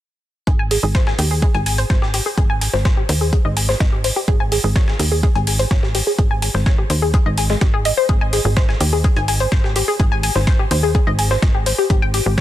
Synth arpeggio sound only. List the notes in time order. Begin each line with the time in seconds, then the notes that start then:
0.47 G#4
0.59 G#5
0.71 G#4
0.83 G#4
0.95 C5
1.07 G#5
1.19 G4
1.31 G#4
1.42 G#4
1.55 G#5
1.66 G#5
1.78 C5
1.90 C5
2.02 G4
2.14 G4
2.26 G#4
2.38 G#4
2.50 G#5
2.61 G#5
2.73 C5
2.85 C5
2.97 G4
3.09 C5
3.21 G#4
3.33 G#4
3.45 D#5
3.57 G#5
3.69 C5
3.80 D#5
3.93 G4
4.04 C5
4.16 G4
4.28 G#4
4.40 G#5
4.52 G#4
4.64 G#4
4.76 C#5
4.88 G#5
5.00 G4
5.12 G#4
5.23 G#4
5.35 G#5
5.47 G#5
5.59 C5
5.71 C#5
5.83 G4
5.95 G4
6.07 G#4
6.19 G#4
6.31 G#5
6.42 G#5
6.55 C5
6.66 C#5
6.78 G4
6.90 C5
7.02 G#4
7.14 G#4
7.26 D#5
7.38 G#5
7.50 G#3
7.62 G4
7.74 G#4
7.85 D#5
7.97 C5
8.09 G#4
8.21 G#5
8.33 G#4
8.45 G#4
8.57 C5
8.69 G#5
8.81 G4
8.93 G#4
9.04 G#4
9.17 G#5
9.28 G#5
9.40 C5
9.52 C5
9.64 G4
9.76 G4
9.88 G#4
10.00 G#4
10.12 G#5
10.23 G#5
10.36 C5
10.47 C5
10.59 G4
10.71 C5
10.83 G#4
10.95 G#4
11.07 D#5
11.19 G#5
11.31 C5
11.43 D#5
11.55 G4
11.66 C5
11.78 G4
11.90 G4
12.02 G5
12.14 G4
12.26 G4